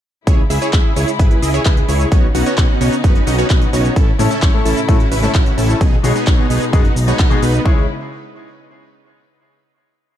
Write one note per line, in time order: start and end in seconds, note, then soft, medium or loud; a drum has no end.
0.27 0.44 C#2 loud
0.27 5.77 C#3 medium
0.27 2.10 G#3 medium
0.27 0.42 E4 loud
0.27 2.10 E4 medium
0.27 0.42 G#4 medium
0.27 0.42 C#5 loud
0.27 kick loud
0.27 closed hi-hat medium
0.27 shaker soft
0.50 0.59 C#2 loud
0.50 0.60 E4 medium
0.50 0.60 G#4 medium
0.50 0.60 E5 loud
0.50 open hi-hat loud
0.50 shaker medium
0.62 0.71 E4 medium
0.62 0.71 G#4 medium
0.62 0.71 C#5 medium
0.62 closed hi-hat medium
0.62 shaker soft
0.73 0.82 C#2 medium
0.73 0.94 E4 medium
0.73 0.94 E5 medium
0.73 kick loud
0.73 clap loud
0.73 closed hi-hat medium
0.73 shaker soft
0.96 1.05 C#2 medium
0.96 1.11 E4 medium
0.96 1.11 G#4 medium
0.96 1.11 C#5 medium
0.96 open hi-hat medium
0.96 shaker medium
1.08 closed hi-hat medium
1.08 shaker soft
1.19 1.37 G#1 loud
1.19 1.40 E4 loud
1.19 1.40 G#4 medium
1.19 1.40 B4 loud
1.19 kick loud
1.19 closed hi-hat medium
1.19 shaker soft
1.31 closed hi-hat soft
1.42 1.60 C#2 medium
1.42 1.51 E4 medium
1.42 1.51 G#4 medium
1.42 1.51 D#5 loud
1.42 open hi-hat loud
1.42 shaker medium
1.54 1.63 E4 medium
1.54 1.63 G#4 medium
1.54 1.63 C#5 loud
1.54 closed hi-hat medium
1.54 shaker soft
1.65 1.83 C#2 medium
1.65 1.86 E4 medium
1.65 1.86 B4 medium
1.65 kick loud
1.65 clap loud
1.65 closed hi-hat medium
1.65 shaker soft
1.77 closed hi-hat soft
1.89 2.06 C#2 loud
1.89 2.09 E4 medium
1.89 2.09 G#4 medium
1.89 2.09 C#5 medium
1.89 open hi-hat loud
1.89 shaker medium
2.00 closed hi-hat medium
2.00 shaker soft
2.12 2.29 B1 loud
2.12 2.26 B3 loud
2.12 3.95 B3 medium
2.12 2.26 C#4 medium
2.12 2.26 D#4 medium
2.12 3.95 D#4 medium
2.12 2.26 F#4 medium
2.12 2.26 C#5 loud
2.12 kick loud
2.12 closed hi-hat medium
2.12 shaker soft
2.35 2.43 B1 loud
2.35 2.45 B3 medium
2.35 2.45 C#4 medium
2.35 2.45 D#4 medium
2.35 2.45 F#4 medium
2.35 2.45 F#5 medium
2.35 open hi-hat loud
2.35 shaker medium
2.46 2.55 B3 medium
2.46 2.55 C#4 medium
2.46 2.55 D#4 medium
2.46 2.55 F#4 medium
2.46 2.55 C#5 medium
2.46 closed hi-hat medium
2.46 shaker soft
2.58 2.66 B1 medium
2.58 2.78 B3 medium
2.58 2.78 C#4 medium
2.58 2.78 D#4 medium
2.58 2.78 F#4 medium
2.58 2.78 F#5 loud
2.58 kick loud
2.58 clap loud
2.58 closed hi-hat medium
2.58 shaker soft
2.81 2.90 B1 medium
2.81 2.96 B3 medium
2.81 2.96 C#4 medium
2.81 2.96 D#4 medium
2.81 2.96 F#4 medium
2.81 2.96 C#5 medium
2.81 open hi-hat medium
2.81 shaker medium
2.92 closed hi-hat medium
2.92 shaker soft
3.04 3.21 F#1 medium
3.04 3.24 B3 medium
3.04 3.24 C#4 medium
3.04 3.24 D#4 medium
3.04 3.24 F#4 medium
3.04 3.24 B4 loud
3.04 kick loud
3.04 closed hi-hat medium
3.04 shaker soft
3.15 closed hi-hat soft
3.27 3.44 B1 medium
3.27 3.36 B3 medium
3.27 3.36 C#4 medium
3.27 3.36 D#4 medium
3.27 3.36 F#4 medium
3.27 3.36 D#5 loud
3.27 open hi-hat loud
3.27 shaker medium
3.38 3.47 B3 medium
3.38 3.47 C#4 medium
3.38 3.47 D#4 medium
3.38 3.47 F#4 medium
3.38 3.47 C#5 loud
3.38 closed hi-hat medium
3.38 shaker soft
3.50 3.67 B1 medium
3.50 3.70 B3 medium
3.50 3.70 C#4 medium
3.50 3.70 D#4 medium
3.50 3.70 B4 medium
3.50 kick loud
3.50 clap loud
3.50 closed hi-hat medium
3.50 shaker soft
3.62 closed hi-hat soft
3.73 3.90 B1 loud
3.73 3.94 B3 medium
3.73 3.94 C#4 medium
3.73 3.94 D#4 medium
3.73 3.94 F#4 medium
3.73 3.94 C#5 loud
3.73 open hi-hat loud
3.73 shaker medium
3.85 closed hi-hat medium
3.85 shaker soft
3.96 4.13 A1 loud
3.96 5.79 A3 medium
3.96 4.11 C#4 loud
3.96 4.11 E4 medium
3.96 5.79 E4 medium
3.96 4.11 A4 loud
3.96 kick loud
3.96 closed hi-hat medium
3.96 shaker soft
4.19 4.28 A1 loud
4.19 4.30 A2 medium
4.19 4.30 A3 medium
4.19 4.29 C#4 medium
4.19 4.30 C#4 medium
4.19 4.29 E4 medium
4.19 4.31 E4 medium
4.19 4.31 A4 loud
4.19 4.29 C#5 medium
4.19 open hi-hat loud
4.19 shaker medium
4.31 4.40 C#4 medium
4.31 4.40 E4 medium
4.31 4.40 A4 medium
4.31 closed hi-hat soft
4.31 shaker soft
4.42 4.51 A1 medium
4.42 4.63 C#4 medium
4.42 4.63 E4 medium
4.42 4.63 C#5 loud
4.42 kick loud
4.42 clap loud
4.42 closed hi-hat medium
4.42 shaker soft
4.53 4.86 A2 medium
4.53 4.86 A3 medium
4.53 4.86 C#4 medium
4.53 4.86 E4 medium
4.53 4.86 A4 medium
4.65 4.74 A1 loud
4.65 4.80 C#4 medium
4.65 4.80 E4 medium
4.65 4.80 A4 medium
4.65 open hi-hat loud
4.65 shaker medium
4.77 closed hi-hat medium
4.77 shaker soft
4.88 4.95 A2 loud
4.88 5.06 A2 loud
4.88 4.95 A3 medium
4.88 5.09 C#4 medium
4.88 4.96 C#4 medium
4.88 5.09 E4 medium
4.88 4.96 E4 medium
4.88 5.09 F#4 loud
4.88 4.96 A4 loud
4.88 kick loud
4.88 closed hi-hat medium
4.88 shaker soft
5.00 closed hi-hat soft
5.12 5.29 A1 medium
5.12 5.20 C#4 medium
5.12 5.20 E4 medium
5.12 5.20 B4 loud
5.12 open hi-hat loud
5.12 shaker medium
5.23 5.30 A2 medium
5.23 5.30 A3 medium
5.23 5.32 C#4 medium
5.23 5.30 C#4 medium
5.23 5.32 E4 medium
5.23 5.30 E4 medium
5.23 5.32 A4 loud
5.23 5.31 A4 loud
5.23 closed hi-hat medium
5.23 shaker soft
5.35 5.52 A1 medium
5.35 5.55 C#4 medium
5.35 5.55 E4 medium
5.35 5.55 F#4 medium
5.35 kick loud
5.35 clap loud
5.35 closed hi-hat medium
5.35 shaker soft
5.46 closed hi-hat soft
5.58 5.75 A1 loud
5.58 5.78 C#4 medium
5.58 5.78 E4 medium
5.58 5.78 A4 medium
5.58 open hi-hat loud
5.58 shaker medium
5.69 5.79 A3 medium
5.69 5.79 C#4 medium
5.69 5.80 E4 medium
5.69 5.80 A4 medium
5.69 closed hi-hat medium
5.69 shaker soft
5.81 5.98 B1 loud
5.81 7.64 B2 medium
5.81 7.64 G#3 medium
5.81 5.96 B3 loud
5.81 5.96 D#4 medium
5.81 7.64 D#4 medium
5.81 5.96 G#4 loud
5.81 kick loud
5.81 closed hi-hat medium
5.81 shaker soft
6.03 6.13 B1 loud
6.03 6.15 B2 medium
6.03 6.15 G#3 medium
6.03 6.14 B3 medium
6.03 6.15 B3 medium
6.03 6.14 D#4 medium
6.03 6.15 D#4 medium
6.03 6.15 G#4 loud
6.03 6.14 C#5 medium
6.03 open hi-hat loud
6.03 shaker medium
6.16 6.24 B3 medium
6.16 6.24 D#4 medium
6.16 6.24 G#4 medium
6.16 closed hi-hat medium
6.16 shaker soft
6.27 6.36 B1 medium
6.27 6.47 B3 medium
6.27 6.47 D#4 medium
6.27 6.47 C#5 loud
6.27 kick loud
6.27 clap loud
6.27 closed hi-hat medium
6.27 shaker soft
6.38 6.70 B2 medium
6.38 6.70 G#3 medium
6.38 6.70 B3 medium
6.38 6.71 D#4 medium
6.38 6.71 G#4 medium
6.50 6.59 B1 medium
6.50 6.65 B3 medium
6.50 6.65 D#4 medium
6.50 6.65 G#4 medium
6.50 open hi-hat loud
6.50 shaker medium
6.62 closed hi-hat soft
6.62 shaker soft
6.73 6.90 F#1 loud
6.73 6.80 B2 medium
6.73 6.80 G#3 medium
6.73 6.80 B3 medium
6.73 6.94 B3 medium
6.73 6.94 D#4 medium
6.73 6.80 D#4 medium
6.73 6.94 F#4 loud
6.73 6.80 G#4 loud
6.73 kick loud
6.73 closed hi-hat medium
6.73 shaker soft
6.85 closed hi-hat soft
6.96 7.13 B1 medium
6.96 open hi-hat loud
6.96 shaker medium
7.07 7.28 B2 medium
7.07 7.28 G#3 medium
7.07 7.18 B3 medium
7.07 7.28 B3 medium
7.07 7.18 D#4 medium
7.07 7.28 D#4 medium
7.07 7.28 B4 medium
7.07 7.18 C#5 medium
7.07 closed hi-hat soft
7.07 shaker soft
7.19 7.37 B1 medium
7.19 7.40 B3 medium
7.19 7.40 D#4 medium
7.19 7.40 F#4 loud
7.19 kick loud
7.19 clap loud
7.19 closed hi-hat medium
7.19 shaker soft
7.30 7.42 B2 loud
7.30 7.42 G#3 medium
7.30 7.42 B3 medium
7.30 7.42 D#4 medium
7.30 7.42 G#4 loud
7.30 closed hi-hat soft
7.42 7.60 B1 loud
7.42 7.63 B3 medium
7.42 7.63 D#4 medium
7.42 7.63 B4 loud
7.42 open hi-hat loud
7.42 shaker medium
7.54 closed hi-hat medium
7.54 shaker soft
7.64 7.87 C#2 loud
7.64 7.87 C#3 medium
7.64 7.82 G#3 medium
7.64 7.87 G#3 medium
7.64 7.82 C#4 medium
7.64 7.87 E4 medium
7.64 7.83 E4 medium
7.64 7.83 G#4 medium
7.64 7.84 G#4 loud
7.64 7.83 C#5 loud
7.64 kick loud